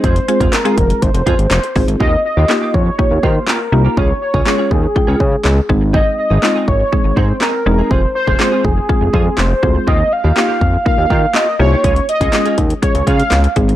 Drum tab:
HH |xxxxxxxxxxxxxxox|----------------|----------------|----------------|
CP |----x-------x---|----x-------x---|----x-------x---|----x-------x---|
SD |----o-------o---|----o-------o---|----o-------o---|----o-------o---|
BD |o--o--o-o-o---o-|o-----o-o-o-----|o--o--o-o-o---o-|o-----o-o-o-----|

HH |----------------|----------------|xxxxxxxxxxxxxxxx|
CP |----x-------x---|----x-------x---|----x-------x---|
SD |----o-------o---|----o-------o---|----o-------o---|
BD |o--o--o-o-o---o-|o-----o-o-o-----|o--o--o-o-o---o-|